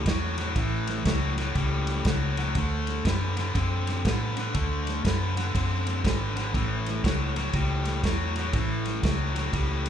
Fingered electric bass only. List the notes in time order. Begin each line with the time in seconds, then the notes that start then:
0.06 E2
0.56 A1
1.06 C#2
1.55 C#2
2.05 C#2
2.55 D2
3.05 F#2
3.55 F#2
4.05 A2
4.55 D2
5.05 F#2
5.55 F#2
6.05 G#1
6.54 A1
7.04 C#2
7.54 C#2
8.04 E2
8.54 A1
9.04 C#2
9.53 C#2